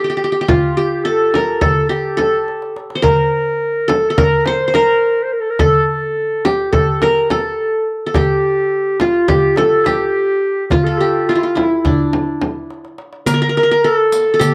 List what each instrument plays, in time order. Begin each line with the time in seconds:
Already playing: qanun F4 A4, clarinet G4
0.04 qanun G4
0.10 qanun G4
0.17 qanun G4
0.24 qanun G4
0.32 qanun G4
0.41 qanun G4
0.48 qanun F4, clarinet F4, frame drum, darbuka dum
0.77 qanun G4, clarinet G4
0.92 darbuka ka
1.04 clarinet A4, qanun A4
1.34 qanun A#4, darbuka tek, frame drum
1.61 qanun A4, clarinet A4, frame drum, darbuka dum
1.89 clarinet G4, qanun G4, darbuka tek
2.17 qanun A4, clarinet A4, darbuka tek, frame drum
2.48 darbuka tek
2.62 darbuka ka
2.77 darbuka tek
2.90 darbuka ka
2.95 qanun C5
3.02 qanun A#4, clarinet A#4, frame drum, darbuka dum
3.47 darbuka ka
3.88 qanun A4, clarinet A4, darbuka tek, frame drum
4.10 qanun A4
4.17 clarinet A#4, qanun A#4, frame drum, darbuka dum
4.46 clarinet C5, qanun C5, darbuka tek, frame drum
4.68 qanun C5
4.74 clarinet A#4, qanun A#4, darbuka tek, frame drum
5.23 clarinet C5
5.33 clarinet A#4
5.41 clarinet A4
5.50 clarinet A#4
5.59 qanun A4, clarinet A4, frame drum, darbuka dum
6.03 darbuka ka
6.45 qanun G4, clarinet G4, darbuka tek, frame drum
6.72 clarinet A4, qanun A4, frame drum, darbuka dum
7.02 qanun A#4, clarinet A#4, darbuka tek, frame drum
7.30 clarinet A4, qanun A4, darbuka tek, frame drum
8.07 qanun A4
8.14 clarinet G4, qanun G4, frame drum, darbuka dum
8.58 darbuka ka
9.00 clarinet F4, qanun F4, darbuka tek, frame drum
9.28 qanun G4, clarinet G4, darbuka dum, frame drum
9.56 clarinet A4, qanun A4, darbuka tek, frame drum
9.85 clarinet G4, qanun G4, darbuka tek, frame drum
10.66 clarinet G4
10.70 clarinet F4, qanun F4, darbuka dum, frame drum
10.84 clarinet A4, qanun A4
10.98 clarinet G4, qanun G4, darbuka ka
11.28 qanun E4 F4, clarinet F4
11.35 clarinet F4, qanun F4
11.42 clarinet F4, qanun F4
11.55 qanun E4, clarinet E4, darbuka tek, frame drum
11.77 clarinet E4
11.84 clarinet D4, qanun D4, darbuka dum, frame drum
12.13 darbuka tek, frame drum
12.42 darbuka tek, frame drum
12.70 darbuka tek
12.85 darbuka ka
12.98 darbuka tek
13.13 darbuka ka
13.26 qanun A#4, clarinet A#4, riq, darbuka dum
13.34 qanun A#4
13.42 qanun A#4
13.49 qanun A#4
13.56 qanun A#4, darbuka ka
13.63 qanun A#4
13.71 qanun A#4
13.83 qanun A4, clarinet A#4
13.95 clarinet A4
14.12 riq, darbuka tek
14.34 qanun A4
14.39 qanun G4, clarinet G4, riq, darbuka dum